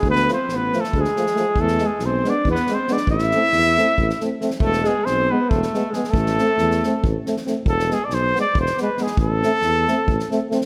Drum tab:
SD |-oo-o-oo-oooo-|-oo-o-o--oo-oo|-oo-o-o--oo-oo|-oo-o----oo-oo|
BD |o-------o-----|o-------o-----|o-------o-----|o-------o-----|

SD |-oo-ooo---ooo-|-oo-o-o--oo-oo|--o-o-o--oo-oo|
BD |o-------o-----|o-------o-----|o-------o-----|